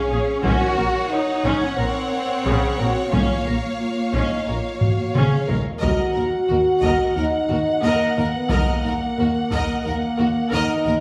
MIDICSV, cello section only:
0, 0, Header, 1, 2, 480
1, 0, Start_track
1, 0, Key_signature, -5, "minor"
1, 0, Tempo, 671892
1, 314, Time_signature, 4, 2, 24, 8
1, 4155, Key_signature, -6, "minor"
1, 7861, End_track
2, 0, Start_track
2, 0, Title_t, "Cello section"
2, 0, Program_c, 0, 48
2, 0, Note_on_c, 0, 61, 72
2, 316, Note_off_c, 0, 61, 0
2, 318, Note_on_c, 0, 66, 88
2, 787, Note_off_c, 0, 66, 0
2, 797, Note_on_c, 0, 63, 76
2, 1156, Note_off_c, 0, 63, 0
2, 1165, Note_on_c, 0, 61, 61
2, 1274, Note_on_c, 0, 60, 78
2, 1280, Note_off_c, 0, 61, 0
2, 2215, Note_off_c, 0, 60, 0
2, 2235, Note_on_c, 0, 58, 62
2, 3647, Note_off_c, 0, 58, 0
2, 4166, Note_on_c, 0, 39, 54
2, 4223, Note_off_c, 0, 39, 0
2, 4402, Note_on_c, 0, 39, 36
2, 4459, Note_off_c, 0, 39, 0
2, 4641, Note_on_c, 0, 39, 38
2, 4698, Note_off_c, 0, 39, 0
2, 4876, Note_on_c, 0, 39, 55
2, 4933, Note_off_c, 0, 39, 0
2, 5119, Note_on_c, 0, 39, 38
2, 5177, Note_off_c, 0, 39, 0
2, 5356, Note_on_c, 0, 39, 37
2, 5413, Note_off_c, 0, 39, 0
2, 5599, Note_on_c, 0, 39, 58
2, 5656, Note_off_c, 0, 39, 0
2, 5834, Note_on_c, 0, 39, 41
2, 5892, Note_off_c, 0, 39, 0
2, 6076, Note_on_c, 0, 39, 58
2, 6133, Note_off_c, 0, 39, 0
2, 6317, Note_on_c, 0, 39, 39
2, 6374, Note_off_c, 0, 39, 0
2, 6551, Note_on_c, 0, 39, 41
2, 6608, Note_off_c, 0, 39, 0
2, 6790, Note_on_c, 0, 39, 55
2, 6848, Note_off_c, 0, 39, 0
2, 7032, Note_on_c, 0, 39, 43
2, 7089, Note_off_c, 0, 39, 0
2, 7279, Note_on_c, 0, 39, 41
2, 7336, Note_off_c, 0, 39, 0
2, 7517, Note_on_c, 0, 39, 61
2, 7574, Note_off_c, 0, 39, 0
2, 7765, Note_on_c, 0, 39, 43
2, 7822, Note_off_c, 0, 39, 0
2, 7861, End_track
0, 0, End_of_file